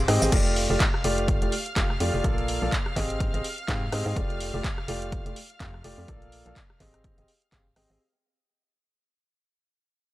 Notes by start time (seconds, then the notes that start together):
Already playing: C5 D6
0.08 G#2 C4 G4 G#4 D#5, cross-stick, open hi-hat
0.22 G#1 C4 G4 G#4 D#5, shaker
0.32 F1 A3 F4 G4 D5 F5 F6, kick, closed hi-hat, crash
0.46 closed hi-hat
0.56 open hi-hat
0.70 F1 A3 F4 G4 D5
0.80 kick, clap, closed hi-hat
0.94 cross-stick
1.04 F1 A3 F4 G4 D5, open hi-hat
1.18 closed hi-hat
1.28 kick, closed hi-hat
1.42 F1 A3 F4 G4 D5, closed hi-hat
1.52 open hi-hat
1.66 closed hi-hat
1.76 F1 A3 F4 G4 F5, kick, clap, closed hi-hat
1.90 cross-stick
2.00 F2 A3 F4 G4 D5, open hi-hat
2.14 F1 A3 F4 G4 D5
2.24 A#1 A#3 F4 A4 D5, kick, closed hi-hat
2.38 closed hi-hat
2.48 open hi-hat
2.62 A#1 A#3 F4 A4 D5
2.72 kick, clap, closed hi-hat
2.86 cross-stick
2.96 G#1 C4 G4 G#4 D#5, kick, clap, open hi-hat
3.10 closed hi-hat
3.20 kick, closed hi-hat
3.34 G#1 C4 G4 G#4 D#5, closed hi-hat
3.44 open hi-hat
3.58 closed hi-hat
3.68 G#2 C4 G4 G#4 F5, kick, clap, closed hi-hat
3.92 G#2 C4 G4 G#4 D#5, cross-stick, open hi-hat
4.06 G#2 C4 G4 G#4 D#5
4.16 F1 A3 F4 G4 D5, kick, closed hi-hat
4.30 closed hi-hat
4.40 open hi-hat
4.54 F1 A3 F4 G4 D5
4.64 kick, clap, closed hi-hat
4.78 cross-stick
4.88 F1 A3 F4 G4 D5, open hi-hat
5.02 closed hi-hat
5.12 kick, closed hi-hat
5.26 F1 A3 F4 G4 D5, closed hi-hat
5.36 open hi-hat
5.50 closed hi-hat
5.60 F2 A3 F4 G4 F5, kick, clap, closed hi-hat
5.74 cross-stick
5.84 F1 A3 F4 G4 D5, open hi-hat
5.98 F2 A3 F4 G4 D5
6.08 A#1 A#3 F4 A4 D5, kick, closed hi-hat
6.22 closed hi-hat
6.32 open hi-hat
6.46 A#1 A#3 F4 A4 D5, closed hi-hat
6.56 kick, clap, closed hi-hat
6.70 cross-stick
6.80 G#1 C4 G4 G#4 D#5, kick, clap, open hi-hat
6.94 cross-stick, closed hi-hat
7.04 kick, closed hi-hat
7.18 G#1 C4 G4 G#4 D#5, closed hi-hat
7.28 open hi-hat
7.42 closed hi-hat
7.52 G#1 C4 G4 G#4 F5, kick, clap, closed hi-hat
7.76 G#1 C4 G4 G#4 D#5, cross-stick, open hi-hat
7.90 G#1 C4 G4 G#4 D#5